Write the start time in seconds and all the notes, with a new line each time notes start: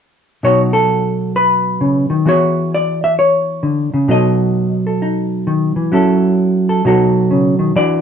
0.43 B2 F#3 D#4 F#4 C#5
0.73 A4
1.36 B4
1.81 C#3
2.10 D#3
2.25 E3 B3 F#4 G#4 C#5
2.75 D5
3.04 E5
3.19 C#5
3.63 D3
3.94 C#3
4.08 B2 F#3 D#4 A4 D#5
4.87 A4
5.02 D#4
5.47 D#3
5.76 E3
5.92 F#3 C#4 E4 A4
6.69 A4
6.85 B2 F#3 D#4 F#4 A4
7.31 C#3
7.59 D#3
7.76 E3 D4 F#4 D5